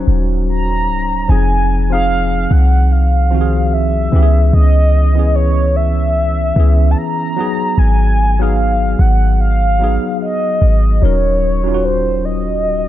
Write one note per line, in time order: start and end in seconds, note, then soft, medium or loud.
0.00 1.31 F#3 medium
0.00 1.31 C#4 medium
0.00 1.30 D#4 medium
0.00 1.31 F#4 medium
0.00 1.30 A#4 medium
0.00 1.31 C5 medium
0.00 0.72 C#5 loud
0.08 0.90 D#1 loud
0.49 1.31 A#5 loud
0.88 1.27 C#1 loud
1.28 2.47 F1 loud
1.28 1.74 F3 medium
1.28 1.74 C4 medium
1.28 1.75 D#4 medium
1.28 1.76 G#4 medium
1.28 1.92 G#5 loud
1.90 2.94 F3 medium
1.90 2.95 C4 medium
1.90 2.95 D#4 medium
1.90 2.96 G#4 medium
1.90 2.53 F5 loud
2.51 4.09 C2 loud
2.51 2.93 F#5 loud
2.92 3.75 F5 loud
3.31 4.14 D#3 medium
3.31 4.12 F3 medium
3.31 4.13 C4 medium
3.35 3.40 F#4 medium
3.41 4.18 G#4 medium
3.73 4.54 E5 loud
4.12 4.52 C#2 loud
4.12 4.94 E3 medium
4.12 4.94 B3 medium
4.12 4.95 C#4 medium
4.16 4.22 G4 medium
4.22 4.99 G#4 medium
4.53 6.52 C#2 loud
4.53 5.37 D#5 loud
5.15 6.19 E3 medium
5.15 6.19 B3 medium
5.15 6.20 C#4 medium
5.19 6.21 G#4 medium
5.35 5.78 C#5 loud
5.76 6.92 E5 loud
6.56 6.95 C#2 loud
6.56 7.37 E3 medium
6.56 7.36 B3 medium
6.56 7.38 C#4 medium
6.60 7.39 G#4 medium
6.91 6.99 A5 medium
6.98 7.80 A#5 loud
7.36 8.18 F#3 medium
7.36 8.19 B3 medium
7.36 8.19 D#4 medium
7.40 8.20 G#4 medium
7.78 8.95 G#1 loud
7.78 8.43 G#5 loud
8.39 9.43 F#3 medium
8.39 9.43 B3 medium
8.39 9.44 D#4 medium
8.39 9.45 G#4 medium
8.39 9.02 F5 loud
8.99 9.98 G#1 loud
8.99 9.40 F#5 medium
9.41 10.18 F5 loud
9.79 10.70 F#3 medium
9.79 10.71 B3 medium
9.79 10.72 D#4 medium
9.84 10.72 G#4 medium
10.22 11.04 D#5 loud
10.62 11.01 G#1 loud
11.01 12.88 D#1 loud
11.01 11.47 F#3 medium
11.01 11.48 C#4 medium
11.01 11.48 D#4 medium
11.01 11.49 A#4 medium
11.01 11.86 C#5 loud
11.64 12.67 F#3 medium
11.64 12.68 C#4 medium
11.64 12.69 D#4 medium
11.68 11.72 F4 medium
11.74 12.73 F#4 medium
11.84 12.27 C5 loud
12.25 12.88 D#5 loud